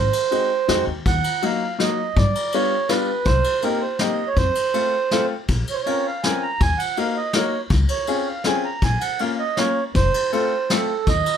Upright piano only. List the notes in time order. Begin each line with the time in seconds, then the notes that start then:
0.31 G#3 C4 D#4 F#4
0.68 G#3 C4 D#4 F#4
1.42 F#3 A#3 D#4 F#4
1.79 F#3 A#3 D#4 F#4
2.54 G3 B3 D4 F4
2.89 G3 B3 D4 F4
3.63 A#3 C4 D#4 G4
4.00 A#3 C4 D#4 G4
4.74 A3 C4 F4 A4
5.12 A3 C4 F4 A4
5.86 C4 C#4 F4 A#4
6.25 C4 C#4 F4 A#4
6.97 A#3 D#4 F#4 A#4
7.35 A#3 D#4 F#4 A#4
8.08 C4 C#4 F4 G#4
8.45 C4 C#4 F4 G#4
9.20 A#3 C#4 F4 A#4
9.57 A#3 C#4 F4 A#4
10.32 A3 C4 F4 A4
10.71 A3 C4 F4 A4